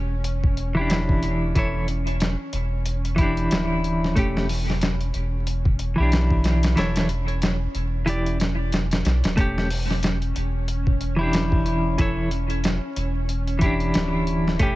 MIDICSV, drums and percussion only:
0, 0, Header, 1, 2, 480
1, 0, Start_track
1, 0, Tempo, 652174
1, 1142, Time_signature, 4, 2, 24, 8
1, 10860, End_track
2, 0, Start_track
2, 0, Title_t, "Drums"
2, 179, Note_on_c, 9, 42, 90
2, 252, Note_off_c, 9, 42, 0
2, 321, Note_on_c, 9, 36, 97
2, 394, Note_off_c, 9, 36, 0
2, 421, Note_on_c, 9, 42, 63
2, 494, Note_off_c, 9, 42, 0
2, 661, Note_on_c, 9, 42, 83
2, 671, Note_on_c, 9, 38, 109
2, 734, Note_off_c, 9, 42, 0
2, 745, Note_off_c, 9, 38, 0
2, 802, Note_on_c, 9, 36, 93
2, 875, Note_off_c, 9, 36, 0
2, 902, Note_on_c, 9, 42, 61
2, 976, Note_off_c, 9, 42, 0
2, 1144, Note_on_c, 9, 36, 101
2, 1145, Note_on_c, 9, 42, 82
2, 1217, Note_off_c, 9, 36, 0
2, 1218, Note_off_c, 9, 42, 0
2, 1384, Note_on_c, 9, 42, 67
2, 1457, Note_off_c, 9, 42, 0
2, 1523, Note_on_c, 9, 42, 44
2, 1596, Note_off_c, 9, 42, 0
2, 1622, Note_on_c, 9, 42, 85
2, 1632, Note_on_c, 9, 38, 106
2, 1696, Note_off_c, 9, 42, 0
2, 1706, Note_off_c, 9, 38, 0
2, 1861, Note_on_c, 9, 42, 70
2, 1935, Note_off_c, 9, 42, 0
2, 2102, Note_on_c, 9, 42, 86
2, 2175, Note_off_c, 9, 42, 0
2, 2244, Note_on_c, 9, 42, 47
2, 2317, Note_off_c, 9, 42, 0
2, 2340, Note_on_c, 9, 42, 69
2, 2343, Note_on_c, 9, 36, 85
2, 2414, Note_off_c, 9, 42, 0
2, 2417, Note_off_c, 9, 36, 0
2, 2481, Note_on_c, 9, 42, 40
2, 2555, Note_off_c, 9, 42, 0
2, 2583, Note_on_c, 9, 42, 84
2, 2594, Note_on_c, 9, 38, 116
2, 2657, Note_off_c, 9, 42, 0
2, 2667, Note_off_c, 9, 38, 0
2, 2828, Note_on_c, 9, 42, 63
2, 2902, Note_off_c, 9, 42, 0
2, 2976, Note_on_c, 9, 38, 46
2, 3050, Note_off_c, 9, 38, 0
2, 3065, Note_on_c, 9, 36, 100
2, 3067, Note_on_c, 9, 42, 83
2, 3138, Note_off_c, 9, 36, 0
2, 3140, Note_off_c, 9, 42, 0
2, 3215, Note_on_c, 9, 38, 53
2, 3289, Note_off_c, 9, 38, 0
2, 3307, Note_on_c, 9, 46, 80
2, 3381, Note_off_c, 9, 46, 0
2, 3458, Note_on_c, 9, 38, 56
2, 3531, Note_off_c, 9, 38, 0
2, 3543, Note_on_c, 9, 42, 88
2, 3553, Note_on_c, 9, 38, 114
2, 3617, Note_off_c, 9, 42, 0
2, 3627, Note_off_c, 9, 38, 0
2, 3684, Note_on_c, 9, 42, 42
2, 3758, Note_off_c, 9, 42, 0
2, 3782, Note_on_c, 9, 42, 68
2, 3856, Note_off_c, 9, 42, 0
2, 4025, Note_on_c, 9, 42, 87
2, 4098, Note_off_c, 9, 42, 0
2, 4161, Note_on_c, 9, 36, 101
2, 4235, Note_off_c, 9, 36, 0
2, 4262, Note_on_c, 9, 42, 66
2, 4336, Note_off_c, 9, 42, 0
2, 4504, Note_on_c, 9, 42, 80
2, 4514, Note_on_c, 9, 38, 111
2, 4577, Note_off_c, 9, 42, 0
2, 4588, Note_off_c, 9, 38, 0
2, 4641, Note_on_c, 9, 36, 96
2, 4714, Note_off_c, 9, 36, 0
2, 4740, Note_on_c, 9, 42, 71
2, 4751, Note_on_c, 9, 38, 90
2, 4814, Note_off_c, 9, 42, 0
2, 4824, Note_off_c, 9, 38, 0
2, 4880, Note_on_c, 9, 42, 77
2, 4890, Note_on_c, 9, 38, 102
2, 4953, Note_off_c, 9, 42, 0
2, 4964, Note_off_c, 9, 38, 0
2, 4983, Note_on_c, 9, 42, 76
2, 4993, Note_on_c, 9, 38, 97
2, 5056, Note_off_c, 9, 42, 0
2, 5067, Note_off_c, 9, 38, 0
2, 5120, Note_on_c, 9, 42, 78
2, 5131, Note_on_c, 9, 38, 102
2, 5194, Note_off_c, 9, 42, 0
2, 5204, Note_off_c, 9, 38, 0
2, 5218, Note_on_c, 9, 42, 66
2, 5292, Note_off_c, 9, 42, 0
2, 5359, Note_on_c, 9, 42, 46
2, 5433, Note_off_c, 9, 42, 0
2, 5460, Note_on_c, 9, 42, 87
2, 5470, Note_on_c, 9, 38, 122
2, 5534, Note_off_c, 9, 42, 0
2, 5544, Note_off_c, 9, 38, 0
2, 5701, Note_on_c, 9, 42, 70
2, 5775, Note_off_c, 9, 42, 0
2, 5942, Note_on_c, 9, 42, 85
2, 6016, Note_off_c, 9, 42, 0
2, 6082, Note_on_c, 9, 42, 46
2, 6155, Note_off_c, 9, 42, 0
2, 6182, Note_on_c, 9, 42, 75
2, 6192, Note_on_c, 9, 38, 98
2, 6255, Note_off_c, 9, 42, 0
2, 6266, Note_off_c, 9, 38, 0
2, 6421, Note_on_c, 9, 42, 79
2, 6431, Note_on_c, 9, 38, 102
2, 6494, Note_off_c, 9, 42, 0
2, 6505, Note_off_c, 9, 38, 0
2, 6560, Note_on_c, 9, 42, 80
2, 6571, Note_on_c, 9, 38, 110
2, 6634, Note_off_c, 9, 42, 0
2, 6644, Note_off_c, 9, 38, 0
2, 6661, Note_on_c, 9, 42, 70
2, 6671, Note_on_c, 9, 38, 86
2, 6735, Note_off_c, 9, 42, 0
2, 6745, Note_off_c, 9, 38, 0
2, 6799, Note_on_c, 9, 42, 81
2, 6810, Note_on_c, 9, 38, 105
2, 6873, Note_off_c, 9, 42, 0
2, 6883, Note_off_c, 9, 38, 0
2, 6901, Note_on_c, 9, 36, 111
2, 6901, Note_on_c, 9, 42, 79
2, 6974, Note_off_c, 9, 36, 0
2, 6974, Note_off_c, 9, 42, 0
2, 7050, Note_on_c, 9, 38, 55
2, 7124, Note_off_c, 9, 38, 0
2, 7143, Note_on_c, 9, 46, 80
2, 7216, Note_off_c, 9, 46, 0
2, 7290, Note_on_c, 9, 38, 58
2, 7364, Note_off_c, 9, 38, 0
2, 7380, Note_on_c, 9, 42, 88
2, 7391, Note_on_c, 9, 38, 114
2, 7454, Note_off_c, 9, 42, 0
2, 7464, Note_off_c, 9, 38, 0
2, 7521, Note_on_c, 9, 42, 43
2, 7594, Note_off_c, 9, 42, 0
2, 7623, Note_on_c, 9, 42, 67
2, 7697, Note_off_c, 9, 42, 0
2, 7861, Note_on_c, 9, 42, 81
2, 7934, Note_off_c, 9, 42, 0
2, 7999, Note_on_c, 9, 36, 99
2, 8073, Note_off_c, 9, 36, 0
2, 8101, Note_on_c, 9, 42, 67
2, 8175, Note_off_c, 9, 42, 0
2, 8340, Note_on_c, 9, 42, 85
2, 8351, Note_on_c, 9, 38, 110
2, 8414, Note_off_c, 9, 42, 0
2, 8424, Note_off_c, 9, 38, 0
2, 8478, Note_on_c, 9, 36, 102
2, 8552, Note_off_c, 9, 36, 0
2, 8580, Note_on_c, 9, 42, 61
2, 8654, Note_off_c, 9, 42, 0
2, 8820, Note_on_c, 9, 36, 110
2, 8820, Note_on_c, 9, 42, 82
2, 8894, Note_off_c, 9, 36, 0
2, 8894, Note_off_c, 9, 42, 0
2, 9061, Note_on_c, 9, 42, 70
2, 9135, Note_off_c, 9, 42, 0
2, 9199, Note_on_c, 9, 42, 45
2, 9272, Note_off_c, 9, 42, 0
2, 9301, Note_on_c, 9, 42, 89
2, 9311, Note_on_c, 9, 38, 123
2, 9375, Note_off_c, 9, 42, 0
2, 9385, Note_off_c, 9, 38, 0
2, 9542, Note_on_c, 9, 42, 68
2, 9615, Note_off_c, 9, 42, 0
2, 9781, Note_on_c, 9, 42, 79
2, 9854, Note_off_c, 9, 42, 0
2, 9917, Note_on_c, 9, 42, 44
2, 9991, Note_off_c, 9, 42, 0
2, 10018, Note_on_c, 9, 42, 66
2, 10020, Note_on_c, 9, 36, 90
2, 10092, Note_off_c, 9, 42, 0
2, 10094, Note_off_c, 9, 36, 0
2, 10158, Note_on_c, 9, 42, 43
2, 10232, Note_off_c, 9, 42, 0
2, 10259, Note_on_c, 9, 42, 82
2, 10269, Note_on_c, 9, 38, 104
2, 10333, Note_off_c, 9, 42, 0
2, 10343, Note_off_c, 9, 38, 0
2, 10503, Note_on_c, 9, 42, 61
2, 10576, Note_off_c, 9, 42, 0
2, 10654, Note_on_c, 9, 38, 48
2, 10728, Note_off_c, 9, 38, 0
2, 10741, Note_on_c, 9, 42, 84
2, 10743, Note_on_c, 9, 36, 109
2, 10815, Note_off_c, 9, 42, 0
2, 10817, Note_off_c, 9, 36, 0
2, 10860, End_track
0, 0, End_of_file